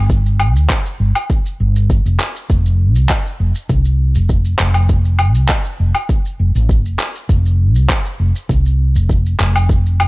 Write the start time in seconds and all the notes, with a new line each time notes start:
Already playing: G1
0.10 kick, shaker
0.26 shaker
0.40 low woodblock
0.56 D2, shaker
0.70 kick, clap, shaker
0.86 shaker
1.00 G1
1.15 low woodblock, shaker
1.30 kick, shaker
1.46 shaker
1.60 G1
1.76 shaker
1.90 kick, shaker
2.05 F1, shaker
2.20 clap
2.36 shaker
2.50 F1, kick, shaker
2.66 shaker
2.95 C2, shaker
3.09 kick, clap, shaker
3.25 shaker
3.40 F1
3.55 shaker
3.69 C2, kick, shaker
3.85 shaker
4.15 F1, shaker
4.29 kick, shaker
4.45 shaker
4.59 F1, clap
4.74 low woodblock, shaker
4.89 kick, shaker
5.05 shaker
5.19 low woodblock
5.35 C2, shaker
5.49 kick, clap, shaker
5.65 shaker
5.80 F1
5.95 low woodblock, shaker
6.09 kick, shaker
6.25 shaker
6.39 F1
6.55 A1, shaker
6.69 kick, shaker
6.85 F1, shaker
6.99 clap
7.16 shaker
7.29 F1, kick, shaker
7.46 shaker
7.75 C2, shaker
7.89 kick, clap, shaker
8.06 shaker
8.19 F1
8.36 shaker
8.49 C2, kick, shaker
8.66 shaker
8.95 F1, shaker
9.09 kick, shaker
9.26 shaker
9.40 F1, clap
9.56 low woodblock, shaker
9.69 kick, shaker
9.86 shaker
10.00 low woodblock